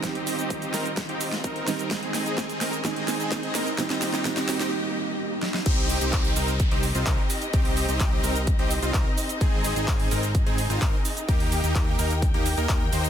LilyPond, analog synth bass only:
\new Staff \with { instrumentName = "Analog synth bass" } { \clef bass \time 4/4 \key c \minor \tempo 4 = 128 r1 | r1 | r1 | c,8. c,8. c,8. c,8 c,16 c,16 r8. |
c,8. c,8. c,8. c,8 c,16 c,16 r8. | aes,,8. aes,,8. aes,,8. aes,,8 aes,,16 aes,,16 r8. | ees,8. ees,8. ees,8. ees,8 ees,16 ees,8 ees,8 | }